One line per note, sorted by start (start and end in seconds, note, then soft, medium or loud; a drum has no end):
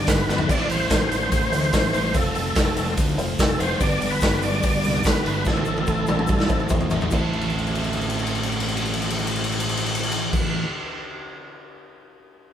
0.00 0.26 G2 loud
0.00 0.27 D3 loud
0.00 0.27 G3 medium
0.00 0.28 B3 loud
0.00 0.36 B3 medium
0.00 0.27 D4 loud
0.00 0.37 D4 medium
0.00 0.37 G4 medium
0.00 0.37 B4 medium
0.07 0.25 G1 medium
0.07 0.28 G2 medium
0.07 0.28 D3 medium
0.07 0.28 G3 medium
0.07 0.28 B3 medium
0.07 0.27 D4 medium
0.07 0.26 G4 medium
0.07 0.50 B4 loud
0.07 kick loud
0.07 snare loud
0.07 open hi-hat medium
0.07 shaker loud
0.28 0.46 G1 medium
0.28 0.48 G2 medium
0.28 0.49 D3 medium
0.28 0.49 G3 soft
0.28 0.49 B3 medium
0.28 0.49 D4 medium
0.28 0.49 G4 medium
0.28 snare medium
0.28 shaker medium
0.38 floor tom loud
0.38 shaker soft
0.48 0.66 A1 loud
0.48 0.89 A2 medium
0.48 0.89 E3 medium
0.48 1.93 A3 loud
0.48 1.15 C4 medium
0.48 0.91 C4 medium
0.48 1.15 E4 medium
0.48 0.90 E4 loud
0.48 1.15 A4 medium
0.48 0.91 A4 medium
0.48 1.15 C5 medium
0.48 0.69 D5 loud
0.48 kick loud
0.48 crash loud
0.48 splash medium
0.48 shaker loud
0.70 0.87 A1 loud
0.70 1.10 C5 loud
0.70 open hi-hat medium
0.70 shaker medium
0.82 shaker soft
0.90 1.08 A1 loud
0.90 1.11 A2 medium
0.90 1.11 E3 loud
0.90 1.11 C4 medium
0.90 1.11 E4 medium
0.90 1.10 A4 loud
0.90 kick loud
0.90 snare loud
0.90 open hi-hat medium
0.90 shaker loud
1.11 1.29 A1 medium
1.11 1.31 C4 soft
1.11 1.31 E4 medium
1.11 1.32 A4 medium
1.11 2.18 C5 loud
1.11 open hi-hat medium
1.11 shaker medium
1.22 shaker soft
1.31 1.49 A1 loud
1.31 1.73 E3 medium
1.31 1.73 C4 medium
1.31 1.74 E4 medium
1.31 1.74 A4 medium
1.31 kick loud
1.31 open hi-hat medium
1.31 shaker loud
1.52 1.70 D2 loud
1.52 2.02 C4 medium
1.52 2.02 E4 medium
1.52 2.02 A4 medium
1.52 2.02 C5 medium
1.52 snare soft
1.52 open hi-hat medium
1.52 shaker medium
1.73 1.90 A1 medium
1.73 1.94 A2 medium
1.73 1.94 E3 medium
1.73 1.94 C4 loud
1.73 1.94 E4 loud
1.73 1.93 A4 loud
1.73 kick loud
1.73 snare loud
1.73 open hi-hat loud
1.73 shaker loud
1.94 2.17 A1 medium
1.94 2.15 A2 medium
1.94 2.13 E3 medium
1.94 2.14 A3 medium
1.94 2.14 C4 medium
1.94 2.15 E4 medium
1.94 2.15 A4 medium
1.94 open hi-hat medium
1.94 shaker medium
2.14 2.32 F1 loud
2.14 2.53 F3 medium
2.14 3.59 A3 loud
2.14 2.81 C4 medium
2.14 2.54 C4 medium
2.14 2.81 F4 medium
2.14 2.54 F4 medium
2.14 2.81 A4 medium
2.14 2.94 A4 medium
2.14 2.55 A4 medium
2.14 2.81 C5 medium
2.14 kick loud
2.14 open hi-hat medium
2.14 shaker loud
2.35 2.52 F1 loud
2.35 open hi-hat medium
2.35 shaker medium
2.47 shaker soft
2.55 2.73 F1 loud
2.55 2.76 F3 medium
2.55 2.77 C4 loud
2.55 2.76 F4 medium
2.55 2.75 A4 medium
2.55 kick loud
2.55 snare loud
2.55 open hi-hat medium
2.55 shaker loud
2.76 2.94 F1 loud
2.76 2.97 C4 medium
2.76 2.98 F4 medium
2.76 2.97 A4 medium
2.76 open hi-hat medium
2.76 shaker medium
2.87 shaker soft
2.97 3.15 D2 loud
2.97 3.37 F3 medium
2.97 3.38 C4 medium
2.97 3.39 F4 medium
2.97 3.39 A4 medium
2.97 kick loud
2.97 open hi-hat loud
2.97 shaker loud
3.18 3.35 F1 loud
3.18 3.68 C4 medium
3.18 3.68 F4 medium
3.18 3.68 A4 medium
3.18 3.68 C5 loud
3.18 open hi-hat medium
3.18 shaker medium
3.38 3.56 F1 loud
3.38 3.59 F3 medium
3.38 3.60 C4 medium
3.38 3.59 F4 medium
3.38 3.60 A4 medium
3.38 3.58 A4 medium
3.38 kick loud
3.38 snare loud
3.38 open hi-hat medium
3.38 shaker loud
3.60 3.77 F1 loud
3.60 3.80 F3 medium
3.60 3.80 A3 medium
3.60 3.80 C4 soft
3.60 3.80 F4 medium
3.60 3.80 A4 medium
3.60 3.81 C5 loud
3.60 open hi-hat medium
3.60 shaker medium
3.80 3.98 G1 loud
3.80 4.20 G2 medium
3.80 4.21 D3 medium
3.80 4.21 G3 medium
3.80 4.47 B3 medium
3.80 4.21 B3 loud
3.80 4.46 D4 medium
3.80 4.21 D4 medium
3.80 4.47 G4 medium
3.80 4.22 G4 medium
3.80 4.47 B4 medium
3.80 4.13 D5 loud
3.80 kick loud
3.80 open hi-hat medium
3.80 shaker loud
3.90 shaker soft
4.01 4.18 G1 loud
4.01 open hi-hat medium
4.01 shaker medium
4.10 4.43 B4 loud
4.10 shaker soft
4.21 4.39 G1 loud
4.21 4.42 G2 medium
4.21 4.43 D3 loud
4.21 4.42 G3 loud
4.21 4.42 B3 medium
4.21 4.41 D4 loud
4.21 4.40 G4 loud
4.21 kick loud
4.21 snare loud
4.21 open hi-hat medium
4.21 shaker medium
4.41 4.59 G1 medium
4.41 4.61 G3 soft
4.41 4.62 B3 medium
4.41 4.63 D4 medium
4.41 4.63 G4 medium
4.41 5.07 D5 loud
4.41 open hi-hat medium
4.41 shaker medium
4.53 shaker soft
4.62 4.81 G1 loud
4.62 5.04 G3 medium
4.62 5.05 B3 medium
4.62 5.05 D4 medium
4.62 5.05 G4 medium
4.62 kick loud
4.62 open hi-hat medium
4.62 shaker loud
4.83 5.01 C2 medium
4.83 5.33 B3 medium
4.83 5.34 D4 medium
4.83 5.34 G4 medium
4.83 5.34 B4 medium
4.83 snare soft
4.83 open hi-hat medium
4.83 shaker medium
5.03 5.22 G1 medium
5.03 5.25 G2 medium
5.03 5.26 D3 medium
5.03 5.26 G3 medium
5.03 5.26 B3 medium
5.03 5.25 D4 medium
5.03 5.24 G4 medium
5.03 5.25 B4 loud
5.03 kick loud
5.03 snare loud
5.03 open hi-hat loud
5.03 shaker loud
5.25 5.43 G1 medium
5.25 5.44 G2 medium
5.25 5.45 D3 medium
5.25 5.45 G3 soft
5.25 5.45 B3 medium
5.25 5.46 D4 medium
5.25 5.46 G4 medium
5.25 5.47 B4 medium
5.25 open hi-hat medium
5.45 5.63 A1 loud
5.45 5.86 A2 medium
5.45 5.86 E3 medium
5.45 6.90 A3 loud
5.45 5.87 C4 loud
5.45 6.13 C4 medium
5.45 5.87 E4 medium
5.45 6.13 E4 medium
5.45 6.13 A4 medium
5.45 5.88 A4 loud
5.45 6.67 A4 medium
5.45 6.13 C5 medium
5.45 kick loud
5.45 snare medium
5.45 shaker loud
5.55 high tom medium
5.55 shaker soft
5.65 5.84 A1 loud
5.65 shaker medium
5.76 high tom medium
5.76 shaker soft
5.87 6.05 A1 loud
5.87 6.08 A2 medium
5.87 6.08 E3 medium
5.87 6.08 C4 medium
5.87 6.08 E4 medium
5.87 6.07 A4 medium
5.87 kick loud
5.87 shaker medium
6.07 6.25 A1 medium
6.07 6.27 C4 medium
6.07 6.28 E4 medium
6.07 6.28 A4 medium
6.07 mid tom medium
6.07 shaker medium
6.19 mid tom medium
6.27 6.46 G2 loud
6.27 6.69 E3 medium
6.27 6.69 C4 medium
6.27 6.70 E4 medium
6.27 6.70 A4 medium
6.27 kick loud
6.27 shaker medium
6.40 snare medium
6.49 6.67 A1 medium
6.49 6.99 C4 medium
6.49 6.99 E4 medium
6.49 6.99 A4 medium
6.49 6.99 C5 loud
6.49 kick loud
6.49 shaker medium
6.59 shaker soft
6.69 6.88 A1 medium
6.69 6.91 A2 medium
6.69 6.91 E3 medium
6.69 6.91 C4 loud
6.69 6.91 E4 loud
6.69 6.89 A4 medium
6.69 kick loud
6.69 floor tom loud
6.69 shaker medium
6.81 floor tom medium
6.90 7.08 A1 medium
6.90 7.10 A2 medium
6.90 7.11 E3 medium
6.90 7.11 A3 medium
6.90 7.11 C4 soft
6.90 7.12 E4 medium
6.90 7.11 A4 medium
6.90 floor tom loud
6.90 shaker medium
7.00 floor tom loud
7.00 shaker soft
7.08 10.58 A2 medium
7.08 10.61 E3 medium
7.08 10.62 C4 medium
7.08 10.36 E4 medium
7.08 10.37 A4 medium
7.08 shaker medium
7.12 10.38 A1 loud
7.12 10.63 A3 medium
7.12 10.63 E4 medium
7.12 10.65 A4 medium
7.12 10.38 C5 medium
7.12 kick loud
7.12 crash medium
7.33 crash medium
7.41 ride soft
7.50 crash medium
7.59 ride medium
7.67 crash medium
7.75 ride medium
7.84 crash medium
7.93 ride medium
8.01 crash medium
8.10 ride medium
8.19 crash medium
8.27 ride medium
8.35 crash medium
8.43 ride medium
8.52 crash medium
8.60 ride medium
8.68 crash medium
8.77 ride medium
8.85 crash medium
8.94 ride medium
9.02 crash medium
9.10 ride medium
9.19 crash medium
9.27 ride medium
9.36 crash medium
9.44 ride medium
9.52 crash medium
9.60 ride medium
9.69 crash loud
9.77 ride medium
9.86 crash loud
9.95 ride medium
10.03 crash loud
10.12 ride medium
10.33 kick loud
10.33 crash loud